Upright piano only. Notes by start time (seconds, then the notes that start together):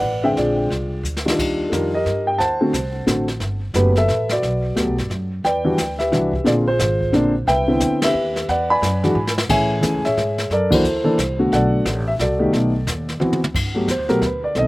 Already playing: B4 D5 F#5
0.24 D3 G#3 C4 E5 G5
0.38 F4 G#4 D5
1.25 D#3 G3 D4 F4
1.69 D#3 G3 D4 F4 A4 A#4
1.94 G4 A#4 D#5
2.27 G5
2.38 C5 F#5 A5
2.61 D3 A3 C4 F#4
3.06 D3 A3 C4 F#4
3.75 F#3 A3 B3 G4 B4
3.98 A4 B4 E5
4.32 F#4 B4 D5
4.76 F#3 A3 B3 G4
5.45 B4 D5 G5
5.65 E3 G3 D4 F#4
5.99 G4 B4 E5
6.12 E3 G3 D4 F#4
6.44 D3 A#3 C4 F4 G#4 D5
6.68 F4 G#4 C5
7.13 D3 A#3 C4 D4
7.48 B4 E5 G5
7.68 D3 B3 C4 E4
8.04 G4 B4 E5
8.49 B4 D5 F#5
8.70 D5 G#5 B5
9.03 E3 G#3 D4 F#4
9.49 E3 A3 C#4 G#4 C#5 E5 G#5
9.81 E3 A3 C#4 G#4
10.05 G#4 C#5 E5
10.52 A4 A#4 D5
10.70 E3 A#3 D4 F#4
10.74 E4 A4 C5
11.04 E3 A#3 D4 A4
11.39 D3 A3 B3 F#4
11.53 A4 D5 F#5
12.08 E5
12.21 F#4 A4 D5
12.39 D#3 A3 B3 G4
12.53 D#3 A3 B3 G4
13.20 E3 B3 C4 F#4
13.74 F#3 A3 B3 G4
13.91 C5
14.09 F#3 A3 B3 G4 A#4
14.26 B4
14.44 D5
14.56 D#3 B3 C4 A4 D#5